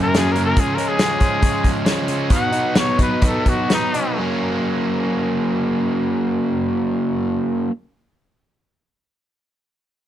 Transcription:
Already playing: F#2 C#3 F#3 A#3 C#4
0.02 A#4
0.14 C#3 F#3 A#3 C#4 G#4, snare, closed hi-hat
0.32 C#4 A#4, closed hi-hat
0.37 F#3 A#3
0.45 A#4
0.56 C#3 F3 G#3 C#4 G#4, kick, closed hi-hat
0.75 G#3 C#4 A#4, closed hi-hat
0.79 F3
0.88 G#4
0.98 C#3 F3 G#3 C#4, snare, closed hi-hat
1.20 F3 G#3 C#4, kick, closed hi-hat
1.41 C#3 F3 G#3 C#4, kick, closed hi-hat
1.64 kick, closed hi-hat
1.85 C#3 F3 G#3 C#4, snare, closed hi-hat
2.07 F3 G#3 C#4, closed hi-hat
2.30 B2 F#3 B3 D#4 F#5, kick, closed hi-hat
2.52 F#3 B3 D#4, closed hi-hat
2.75 B2 F#3 B3 D#4 C#5, snare, closed hi-hat
2.98 F#3 B3 D#4 B4, kick, closed hi-hat
3.21 B2 F#3 B3 D#4, kick, closed hi-hat
3.26 A4
3.46 F#4, kick, closed hi-hat
3.69 B2 F#3 B3 D#4, snare, closed hi-hat
3.94 F#3 B3 D#4, closed hi-hat
4.17 F#2 C#3 F#3 A#3
4.22 C#4

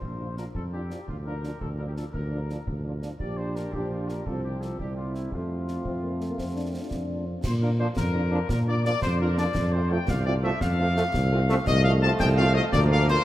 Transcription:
Already playing: C5
0.02 A#1, concert bass drum
0.20 F3 D4 F4
0.37 F3 D4 F4 A#4, snare
0.55 F2 A4, concert bass drum
0.73 F3 D4 F4 G4
0.90 F3 D4 F4, snare
1.08 D2 F4, concert bass drum
1.26 F3 D4 F4 A#4
1.44 F3 D4 F4, snare
1.61 D2 A4, concert bass drum
1.79 F3 D4 F4 A#4
1.88 G4
1.97 F3 D4 F4 A4, snare
2.13 D2 A#4, concert bass drum
2.31 F3 D4 F4
2.49 F3 D4 F4, snare
2.67 D2, concert bass drum
2.85 F3 D4 F4
3.02 F3 D4 F4, snare
3.20 A#1 F3 D4 G4 D5, concert bass drum
3.38 C5
3.55 A#4, snare
3.73 A#1 F3 D4 G4, concert bass drum
3.91 F4
4.08 A#4, snare
4.26 C2 F3 C4 F4 A4, concert bass drum
4.43 G4
4.62 A4, snare
4.79 C2 G3 C4 E4 G4, concert bass drum
4.97 F4
5.15 E4, snare
5.32 F2 A3 C4 F4, concert bass drum
5.68 snare
5.85 F2 C4, concert bass drum
6.03 A#3
6.20 A3, snare
6.30 A#3
6.38 F2 C4, concert bass drum, snare
6.55 D4
6.73 C4
6.81 D4
6.91 F2, concert bass drum, snare
7.26 C4
7.44 A#2 C5, concert bass drum, snare, crash
7.62 A#3 D4 F4 A#4
7.79 F3 A#3 D4 F4 C5
7.97 F2 A#4, concert bass drum, snare
8.14 A#3 D4 F4
8.31 F3 A#3 D4 F4
8.49 A#2 A#4, concert bass drum, snare
8.67 A#3 D4 F4 D5
8.83 F3 A#3 D4 F4 D5, snare
9.02 F2 C5, concert bass drum, snare
9.20 A#3 D4 F4 A#4
9.37 F3 A#3 D4 F4 D5, snare
9.55 F2, concert bass drum, snare, crash
9.73 A3 C4 F4 C5
9.90 F3 A3 C4 F4 G5
10.08 C2 F5, concert bass drum, snare
10.26 A3 C4 F4 D5
10.43 F3 A3 C4 F4 E5
10.60 F2 F5, concert bass drum, snare
10.79 A3 C4 F4
10.96 F3 A3 C4 F4, snare
11.13 C2, concert bass drum, snare
11.31 A3 C4 F4
11.49 F3 A3 C4 F4, snare
11.67 C2 F3 A3 D#5, concert bass drum, snare, crash
11.84 A3 C4 F4 F5
12.02 A3 C4 F4 A5
12.20 C2 G5, concert bass drum, snare
12.37 A3 C4 F4 F5
12.55 A3 C4 F4 D#5
12.72 D2 F3 A#3 D5, concert bass drum, snare
12.90 A#3 F4 F5
13.08 A#3 F4 C5, snare

